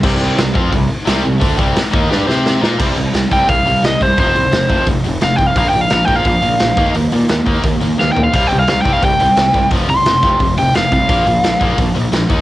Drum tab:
CC |x-------|--------|x-------|--------|
HH |--o-o-o-|o-o-----|-ooooooo|oooooooo|
SD |--o---o-|--o-oooo|--o---o-|--o---o-|
FT |--------|--------|--------|--------|
BD |o--oo---|oo-o----|o--oo--o|o--oo--o|

CC |--------|--------|x-------|--------|
HH |oooooooo|oooooo--|oooooooo|oooooooo|
SD |--o---o-|--o---o-|--o---o-|--o---o-|
FT |--------|-------o|--------|--------|
BD |o--oo--o|---oo---|o--oo--o|o--oo--o|

CC |--------|
HH |oooooooo|
SD |--o---o-|
FT |--------|
BD |o--oo--o|